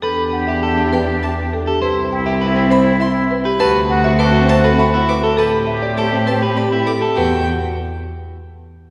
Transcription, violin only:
\new Staff \with { instrumentName = "Violin" } { \time 3/4 \key e \minor \tempo 4 = 101 r4. g''16 r16 a''16 r8. | r4. b''16 r16 c'''16 r8. | a''16 r8. d'''16 r16 a''16 r16 b''16 r16 d'''16 r16 | a''16 r8. d'''16 r16 a''16 r16 b''16 r16 d'''16 r16 |
g''8 r2 r8 | }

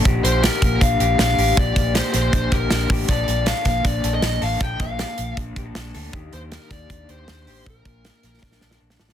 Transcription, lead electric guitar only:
\new Staff \with { instrumentName = "Lead electric guitar" } { \time 4/4 \key bes \major \tempo 4 = 158 r8 c''8 bes'4 f''4 f''4 | d''4 c''8 c''4 bes'4 r8 | d''4 f''4 d''8. ees''8. f''8 | g''8 f''4. r2 |
r8 c''8 bes'8 d''4 c''4. | bes'2. r4 | }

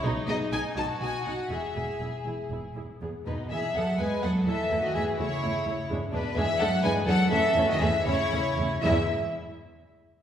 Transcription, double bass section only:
\new Staff \with { instrumentName = "Double bass section" } { \clef bass \time 6/8 \key e \major \tempo 4. = 82 b,,8 b,,8 b,,8 b,,8 b,,8 b,,8 | e,,8 e,,8 e,,8 e,,8 e,,8 e,,8 | e,8 e,8 e,8 e,8 e,8 e,8 | e,8 e,8 e,8 e,8 e,8 e,8 |
e,8 e,8 e,8 e,8 e,8 e,8 | e,8 e,8 e,8 e,8 e,8 e,8 | e,8 r2 r8 | }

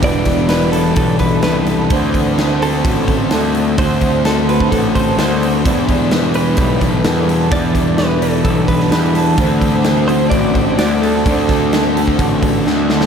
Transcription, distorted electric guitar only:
\new Staff \with { instrumentName = "Distorted electric guitar" } { \clef bass \time 4/4 \key d \mixolydian \tempo 4 = 128 <e, b, e>1 | <d a d'>1 | <d a d'>1 | <e, b, e>1 |
<e, b, e>1 | <d a d'>1 | <d a d'>1 | }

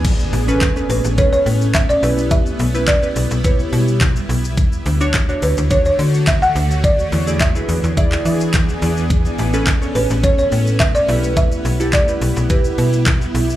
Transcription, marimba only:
\new Staff \with { instrumentName = "Marimba" } { \time 4/4 \key a \major \tempo 4 = 106 r4. b'8 cis''16 cis''8. e''16 d''8. | e''4 d''4 b'4 r4 | r4. b'8 cis''16 cis''8. e''16 fis''8. | d''4 e''4 e''4 r4 |
r4. b'8 cis''16 cis''8. e''16 d''8. | e''4 d''4 b'4 r4 | }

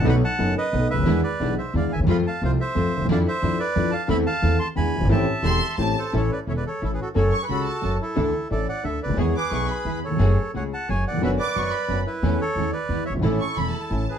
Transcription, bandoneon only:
\new Staff \with { instrumentName = "Bandoneon" } { \time 3/4 \key a \minor \tempo 4 = 178 <fis'' b''>8 <fis'' a''>4 <b' dis''>4 <b' e''>8~ | <b' e''>8 <b' d''>4 <c'' e''>8 <d'' f''>8 <e'' gis''>8 | <f'' b''>8 <f'' a''>8 <c'' f''>8 <c'' e''>4. | <d'' f''>8 <c'' e''>4 <b' d''>4 <f'' a''>8 |
<e'' b''>8 <f'' a''>4 <a'' c'''>8 <gis'' b''>4 | <e'' a''>2 r8 <a' c''>8 | \key a \major <a' cis''>8 <b' d''>8 <cis'' e''>16 <b' d''>16 <a' cis''>8 <e' a'>16 <gis' b'>16 <fis' a'>8 | <a' cis''>8. <gis' b'>16 <fis' a'>4. <e' a'>8~ |
<e' a'>4 <a' d''>8 <d'' fis''>8 <a' e''>8 <b' d''>8 | <gis' cis''>8 <gis' b'>2 <a' cis''>8~ | <a' cis''>4 <cis'' fis''>8 <fis'' a''>8 <cis'' gis''>8 <d'' fis''>8 | <b' e''>8 <b' d''>2 <e' b'>8~ |
<e' b'>8 <a' cis''>4 <b' d''>4 <cis'' e''>8 | <e' a'>2~ <e' a'>8 <gis' b'>8 | }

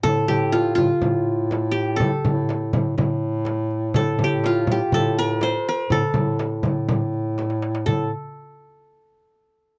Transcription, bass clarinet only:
\new Staff \with { instrumentName = "Bass clarinet" } { \clef bass \time 4/4 \tempo 4 = 123 a,8 a,4 a,16 r16 a,2 | a,16 r16 a,4 a,8 a,2 | a,8 a,4 a,16 r16 a,4. r8 | a,16 r16 a,4 a,8 a,2 |
a,8 r2. r8 | }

